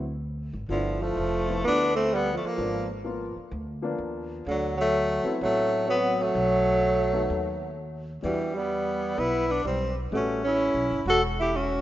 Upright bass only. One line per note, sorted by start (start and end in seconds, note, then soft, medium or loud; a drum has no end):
0.00 0.50 D2 medium
0.53 0.68 G#1 medium
0.69 1.13 G1 medium
1.17 1.61 F1 medium
1.64 2.38 D2 medium
2.43 muted upright bass stroke soft
2.58 3.32 G#1 medium
3.36 muted upright bass stroke soft
3.51 3.96 D2 medium
3.98 4.43 D#2 medium
4.46 5.21 D2 medium
5.25 muted upright bass stroke soft
5.41 6.31 A1 medium
6.35 7.25 B1 medium
7.30 8.20 D#2 medium
8.24 9.14 E2 medium
9.18 9.61 B1 medium
9.65 10.08 B1 medium
10.12 10.71 A1 medium
10.74 10.89 B1 medium
10.90 11.05 G1 medium
11.06 11.80 E1 medium